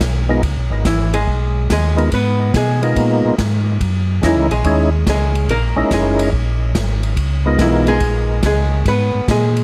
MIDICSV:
0, 0, Header, 1, 5, 480
1, 0, Start_track
1, 0, Tempo, 421348
1, 488, Time_signature, 4, 2, 24, 8
1, 10978, End_track
2, 0, Start_track
2, 0, Title_t, "Tonewheel organ"
2, 0, Program_c, 0, 16
2, 331, Note_on_c, 0, 56, 61
2, 332, Note_on_c, 0, 59, 60
2, 333, Note_on_c, 0, 63, 55
2, 343, Note_on_c, 0, 65, 57
2, 347, Note_on_c, 0, 70, 69
2, 473, Note_off_c, 0, 56, 0
2, 473, Note_off_c, 0, 59, 0
2, 474, Note_off_c, 0, 63, 0
2, 479, Note_off_c, 0, 65, 0
2, 481, Note_off_c, 0, 70, 0
2, 2236, Note_on_c, 0, 56, 60
2, 2244, Note_on_c, 0, 59, 56
2, 2245, Note_on_c, 0, 63, 57
2, 2252, Note_on_c, 0, 65, 58
2, 2261, Note_on_c, 0, 70, 68
2, 2385, Note_off_c, 0, 56, 0
2, 2389, Note_off_c, 0, 59, 0
2, 2390, Note_off_c, 0, 63, 0
2, 2393, Note_off_c, 0, 65, 0
2, 2398, Note_off_c, 0, 70, 0
2, 3212, Note_on_c, 0, 56, 69
2, 3217, Note_on_c, 0, 59, 59
2, 3221, Note_on_c, 0, 63, 63
2, 3224, Note_on_c, 0, 65, 61
2, 3235, Note_on_c, 0, 70, 73
2, 3817, Note_off_c, 0, 56, 0
2, 3819, Note_off_c, 0, 59, 0
2, 3821, Note_off_c, 0, 63, 0
2, 3823, Note_off_c, 0, 65, 0
2, 3828, Note_off_c, 0, 70, 0
2, 4801, Note_on_c, 0, 56, 50
2, 4813, Note_on_c, 0, 61, 48
2, 4818, Note_on_c, 0, 63, 47
2, 4826, Note_on_c, 0, 64, 50
2, 4833, Note_on_c, 0, 70, 54
2, 5093, Note_off_c, 0, 56, 0
2, 5099, Note_off_c, 0, 61, 0
2, 5102, Note_off_c, 0, 63, 0
2, 5106, Note_off_c, 0, 64, 0
2, 5109, Note_off_c, 0, 70, 0
2, 5294, Note_on_c, 0, 56, 62
2, 5299, Note_on_c, 0, 61, 64
2, 5302, Note_on_c, 0, 63, 55
2, 5313, Note_on_c, 0, 64, 60
2, 5318, Note_on_c, 0, 68, 65
2, 5579, Note_off_c, 0, 56, 0
2, 5582, Note_off_c, 0, 61, 0
2, 5583, Note_off_c, 0, 63, 0
2, 5589, Note_off_c, 0, 64, 0
2, 5592, Note_off_c, 0, 68, 0
2, 6562, Note_on_c, 0, 56, 65
2, 6565, Note_on_c, 0, 61, 64
2, 6572, Note_on_c, 0, 63, 60
2, 6579, Note_on_c, 0, 64, 56
2, 6583, Note_on_c, 0, 70, 68
2, 7171, Note_off_c, 0, 56, 0
2, 7173, Note_off_c, 0, 61, 0
2, 7176, Note_off_c, 0, 63, 0
2, 7179, Note_off_c, 0, 64, 0
2, 7181, Note_off_c, 0, 70, 0
2, 8493, Note_on_c, 0, 56, 66
2, 8494, Note_on_c, 0, 59, 60
2, 8503, Note_on_c, 0, 63, 58
2, 8510, Note_on_c, 0, 65, 61
2, 8511, Note_on_c, 0, 70, 67
2, 9097, Note_off_c, 0, 56, 0
2, 9097, Note_off_c, 0, 59, 0
2, 9102, Note_off_c, 0, 63, 0
2, 9106, Note_off_c, 0, 65, 0
2, 9106, Note_off_c, 0, 70, 0
2, 10978, End_track
3, 0, Start_track
3, 0, Title_t, "Hollow-body jazz guitar"
3, 0, Program_c, 1, 26
3, 987, Note_on_c, 1, 64, 54
3, 999, Note_on_c, 1, 52, 42
3, 1290, Note_off_c, 1, 64, 0
3, 1295, Note_on_c, 1, 68, 81
3, 1296, Note_off_c, 1, 52, 0
3, 1307, Note_on_c, 1, 56, 66
3, 1886, Note_off_c, 1, 68, 0
3, 1892, Note_off_c, 1, 56, 0
3, 1962, Note_on_c, 1, 68, 79
3, 1967, Note_on_c, 1, 56, 63
3, 2392, Note_off_c, 1, 68, 0
3, 2395, Note_off_c, 1, 56, 0
3, 2434, Note_on_c, 1, 71, 84
3, 2446, Note_on_c, 1, 59, 73
3, 2868, Note_off_c, 1, 71, 0
3, 2875, Note_off_c, 1, 59, 0
3, 2920, Note_on_c, 1, 68, 66
3, 2933, Note_on_c, 1, 56, 56
3, 3351, Note_off_c, 1, 68, 0
3, 3358, Note_off_c, 1, 56, 0
3, 4851, Note_on_c, 1, 64, 49
3, 4859, Note_on_c, 1, 52, 41
3, 5142, Note_off_c, 1, 64, 0
3, 5144, Note_on_c, 1, 68, 75
3, 5145, Note_off_c, 1, 52, 0
3, 5152, Note_on_c, 1, 56, 63
3, 5730, Note_off_c, 1, 68, 0
3, 5734, Note_off_c, 1, 56, 0
3, 5806, Note_on_c, 1, 56, 55
3, 5806, Note_on_c, 1, 68, 66
3, 6232, Note_off_c, 1, 68, 0
3, 6234, Note_off_c, 1, 56, 0
3, 6272, Note_on_c, 1, 70, 89
3, 6279, Note_on_c, 1, 58, 68
3, 6706, Note_off_c, 1, 70, 0
3, 6710, Note_off_c, 1, 58, 0
3, 6760, Note_on_c, 1, 68, 67
3, 6767, Note_on_c, 1, 56, 55
3, 7190, Note_off_c, 1, 68, 0
3, 7194, Note_off_c, 1, 56, 0
3, 8674, Note_on_c, 1, 64, 56
3, 8678, Note_on_c, 1, 52, 41
3, 8972, Note_off_c, 1, 64, 0
3, 8975, Note_off_c, 1, 52, 0
3, 8978, Note_on_c, 1, 68, 90
3, 8984, Note_on_c, 1, 56, 77
3, 9567, Note_off_c, 1, 68, 0
3, 9570, Note_off_c, 1, 56, 0
3, 9635, Note_on_c, 1, 56, 65
3, 9638, Note_on_c, 1, 68, 66
3, 10068, Note_off_c, 1, 68, 0
3, 10069, Note_off_c, 1, 56, 0
3, 10116, Note_on_c, 1, 71, 86
3, 10122, Note_on_c, 1, 59, 70
3, 10550, Note_off_c, 1, 71, 0
3, 10553, Note_off_c, 1, 59, 0
3, 10598, Note_on_c, 1, 56, 53
3, 10606, Note_on_c, 1, 68, 61
3, 10978, Note_off_c, 1, 56, 0
3, 10978, Note_off_c, 1, 68, 0
3, 10978, End_track
4, 0, Start_track
4, 0, Title_t, "Tonewheel organ"
4, 0, Program_c, 2, 16
4, 5, Note_on_c, 2, 35, 81
4, 472, Note_off_c, 2, 35, 0
4, 487, Note_on_c, 2, 37, 80
4, 643, Note_off_c, 2, 37, 0
4, 644, Note_on_c, 2, 35, 50
4, 799, Note_on_c, 2, 32, 59
4, 806, Note_off_c, 2, 35, 0
4, 952, Note_off_c, 2, 32, 0
4, 967, Note_on_c, 2, 32, 83
4, 1433, Note_off_c, 2, 32, 0
4, 1450, Note_on_c, 2, 35, 71
4, 1915, Note_off_c, 2, 35, 0
4, 1932, Note_on_c, 2, 39, 85
4, 2395, Note_off_c, 2, 39, 0
4, 2409, Note_on_c, 2, 44, 77
4, 2874, Note_off_c, 2, 44, 0
4, 2891, Note_on_c, 2, 47, 83
4, 3355, Note_off_c, 2, 47, 0
4, 3374, Note_on_c, 2, 46, 70
4, 3670, Note_off_c, 2, 46, 0
4, 3702, Note_on_c, 2, 46, 34
4, 3778, Note_off_c, 2, 46, 0
4, 3852, Note_on_c, 2, 44, 77
4, 4315, Note_off_c, 2, 44, 0
4, 4331, Note_on_c, 2, 42, 76
4, 4794, Note_off_c, 2, 42, 0
4, 4811, Note_on_c, 2, 40, 78
4, 4964, Note_off_c, 2, 40, 0
4, 4971, Note_on_c, 2, 37, 53
4, 5123, Note_on_c, 2, 34, 63
4, 5129, Note_off_c, 2, 37, 0
4, 5273, Note_off_c, 2, 34, 0
4, 5291, Note_on_c, 2, 39, 79
4, 5754, Note_off_c, 2, 39, 0
4, 5769, Note_on_c, 2, 37, 81
4, 6233, Note_off_c, 2, 37, 0
4, 6251, Note_on_c, 2, 34, 80
4, 6547, Note_off_c, 2, 34, 0
4, 6572, Note_on_c, 2, 34, 37
4, 6650, Note_off_c, 2, 34, 0
4, 6727, Note_on_c, 2, 30, 86
4, 7192, Note_off_c, 2, 30, 0
4, 7206, Note_on_c, 2, 34, 75
4, 7671, Note_off_c, 2, 34, 0
4, 7687, Note_on_c, 2, 32, 84
4, 8152, Note_off_c, 2, 32, 0
4, 8161, Note_on_c, 2, 37, 80
4, 8629, Note_off_c, 2, 37, 0
4, 8639, Note_on_c, 2, 35, 91
4, 9108, Note_off_c, 2, 35, 0
4, 9118, Note_on_c, 2, 34, 77
4, 9588, Note_off_c, 2, 34, 0
4, 9604, Note_on_c, 2, 37, 86
4, 10071, Note_off_c, 2, 37, 0
4, 10083, Note_on_c, 2, 44, 82
4, 10385, Note_off_c, 2, 44, 0
4, 10418, Note_on_c, 2, 44, 37
4, 10495, Note_off_c, 2, 44, 0
4, 10572, Note_on_c, 2, 46, 85
4, 10978, Note_off_c, 2, 46, 0
4, 10978, End_track
5, 0, Start_track
5, 0, Title_t, "Drums"
5, 6, Note_on_c, 9, 38, 66
5, 7, Note_on_c, 9, 36, 19
5, 7, Note_on_c, 9, 44, 52
5, 7, Note_on_c, 9, 51, 64
5, 120, Note_off_c, 9, 38, 0
5, 121, Note_off_c, 9, 36, 0
5, 121, Note_off_c, 9, 44, 0
5, 121, Note_off_c, 9, 51, 0
5, 487, Note_on_c, 9, 36, 22
5, 488, Note_on_c, 9, 51, 56
5, 601, Note_off_c, 9, 36, 0
5, 602, Note_off_c, 9, 51, 0
5, 968, Note_on_c, 9, 36, 23
5, 968, Note_on_c, 9, 38, 59
5, 969, Note_on_c, 9, 44, 50
5, 969, Note_on_c, 9, 51, 63
5, 1082, Note_off_c, 9, 36, 0
5, 1082, Note_off_c, 9, 38, 0
5, 1083, Note_off_c, 9, 44, 0
5, 1083, Note_off_c, 9, 51, 0
5, 1294, Note_on_c, 9, 51, 63
5, 1408, Note_off_c, 9, 51, 0
5, 1451, Note_on_c, 9, 36, 16
5, 1565, Note_off_c, 9, 36, 0
5, 1933, Note_on_c, 9, 36, 18
5, 1936, Note_on_c, 9, 38, 65
5, 1937, Note_on_c, 9, 44, 57
5, 1937, Note_on_c, 9, 51, 68
5, 2046, Note_off_c, 9, 36, 0
5, 2050, Note_off_c, 9, 38, 0
5, 2051, Note_off_c, 9, 44, 0
5, 2051, Note_off_c, 9, 51, 0
5, 2258, Note_on_c, 9, 51, 42
5, 2372, Note_off_c, 9, 51, 0
5, 2411, Note_on_c, 9, 51, 58
5, 2413, Note_on_c, 9, 36, 18
5, 2525, Note_off_c, 9, 51, 0
5, 2527, Note_off_c, 9, 36, 0
5, 2893, Note_on_c, 9, 36, 25
5, 2894, Note_on_c, 9, 38, 62
5, 2895, Note_on_c, 9, 44, 51
5, 2895, Note_on_c, 9, 51, 63
5, 3007, Note_off_c, 9, 36, 0
5, 3008, Note_off_c, 9, 38, 0
5, 3009, Note_off_c, 9, 44, 0
5, 3009, Note_off_c, 9, 51, 0
5, 3220, Note_on_c, 9, 51, 41
5, 3334, Note_off_c, 9, 51, 0
5, 3374, Note_on_c, 9, 36, 20
5, 3376, Note_on_c, 9, 51, 55
5, 3488, Note_off_c, 9, 36, 0
5, 3490, Note_off_c, 9, 51, 0
5, 3855, Note_on_c, 9, 36, 19
5, 3856, Note_on_c, 9, 38, 62
5, 3857, Note_on_c, 9, 44, 49
5, 3857, Note_on_c, 9, 51, 63
5, 3969, Note_off_c, 9, 36, 0
5, 3969, Note_off_c, 9, 38, 0
5, 3971, Note_off_c, 9, 44, 0
5, 3971, Note_off_c, 9, 51, 0
5, 4334, Note_on_c, 9, 36, 26
5, 4337, Note_on_c, 9, 51, 56
5, 4448, Note_off_c, 9, 36, 0
5, 4451, Note_off_c, 9, 51, 0
5, 4814, Note_on_c, 9, 36, 18
5, 4818, Note_on_c, 9, 38, 57
5, 4819, Note_on_c, 9, 44, 47
5, 4819, Note_on_c, 9, 51, 54
5, 4928, Note_off_c, 9, 36, 0
5, 4932, Note_off_c, 9, 38, 0
5, 4933, Note_off_c, 9, 44, 0
5, 4933, Note_off_c, 9, 51, 0
5, 5137, Note_on_c, 9, 51, 45
5, 5251, Note_off_c, 9, 51, 0
5, 5291, Note_on_c, 9, 51, 52
5, 5292, Note_on_c, 9, 36, 18
5, 5405, Note_off_c, 9, 51, 0
5, 5406, Note_off_c, 9, 36, 0
5, 5772, Note_on_c, 9, 36, 22
5, 5772, Note_on_c, 9, 38, 64
5, 5773, Note_on_c, 9, 44, 57
5, 5773, Note_on_c, 9, 51, 67
5, 5885, Note_off_c, 9, 38, 0
5, 5886, Note_off_c, 9, 36, 0
5, 5887, Note_off_c, 9, 44, 0
5, 5887, Note_off_c, 9, 51, 0
5, 6097, Note_on_c, 9, 51, 44
5, 6211, Note_off_c, 9, 51, 0
5, 6250, Note_on_c, 9, 36, 21
5, 6257, Note_on_c, 9, 51, 61
5, 6364, Note_off_c, 9, 36, 0
5, 6371, Note_off_c, 9, 51, 0
5, 6729, Note_on_c, 9, 36, 18
5, 6731, Note_on_c, 9, 38, 60
5, 6732, Note_on_c, 9, 44, 45
5, 6732, Note_on_c, 9, 51, 60
5, 6843, Note_off_c, 9, 36, 0
5, 6845, Note_off_c, 9, 38, 0
5, 6846, Note_off_c, 9, 44, 0
5, 6846, Note_off_c, 9, 51, 0
5, 7054, Note_on_c, 9, 51, 63
5, 7168, Note_off_c, 9, 51, 0
5, 7209, Note_on_c, 9, 36, 21
5, 7323, Note_off_c, 9, 36, 0
5, 7687, Note_on_c, 9, 36, 21
5, 7689, Note_on_c, 9, 38, 66
5, 7690, Note_on_c, 9, 44, 58
5, 7690, Note_on_c, 9, 51, 69
5, 7801, Note_off_c, 9, 36, 0
5, 7803, Note_off_c, 9, 38, 0
5, 7804, Note_off_c, 9, 44, 0
5, 7804, Note_off_c, 9, 51, 0
5, 8010, Note_on_c, 9, 51, 43
5, 8124, Note_off_c, 9, 51, 0
5, 8163, Note_on_c, 9, 36, 21
5, 8167, Note_on_c, 9, 51, 61
5, 8277, Note_off_c, 9, 36, 0
5, 8281, Note_off_c, 9, 51, 0
5, 8643, Note_on_c, 9, 38, 61
5, 8644, Note_on_c, 9, 36, 21
5, 8644, Note_on_c, 9, 44, 45
5, 8644, Note_on_c, 9, 51, 65
5, 8757, Note_off_c, 9, 36, 0
5, 8757, Note_off_c, 9, 38, 0
5, 8758, Note_off_c, 9, 44, 0
5, 8758, Note_off_c, 9, 51, 0
5, 8963, Note_on_c, 9, 51, 46
5, 9077, Note_off_c, 9, 51, 0
5, 9117, Note_on_c, 9, 51, 54
5, 9121, Note_on_c, 9, 36, 21
5, 9231, Note_off_c, 9, 51, 0
5, 9235, Note_off_c, 9, 36, 0
5, 9600, Note_on_c, 9, 38, 63
5, 9601, Note_on_c, 9, 44, 52
5, 9601, Note_on_c, 9, 51, 67
5, 9605, Note_on_c, 9, 36, 23
5, 9714, Note_off_c, 9, 38, 0
5, 9715, Note_off_c, 9, 44, 0
5, 9715, Note_off_c, 9, 51, 0
5, 9719, Note_off_c, 9, 36, 0
5, 10087, Note_on_c, 9, 36, 25
5, 10088, Note_on_c, 9, 51, 60
5, 10201, Note_off_c, 9, 36, 0
5, 10202, Note_off_c, 9, 51, 0
5, 10571, Note_on_c, 9, 36, 26
5, 10573, Note_on_c, 9, 38, 61
5, 10574, Note_on_c, 9, 44, 52
5, 10574, Note_on_c, 9, 51, 61
5, 10685, Note_off_c, 9, 36, 0
5, 10687, Note_off_c, 9, 38, 0
5, 10688, Note_off_c, 9, 44, 0
5, 10688, Note_off_c, 9, 51, 0
5, 10897, Note_on_c, 9, 51, 46
5, 10978, Note_off_c, 9, 51, 0
5, 10978, End_track
0, 0, End_of_file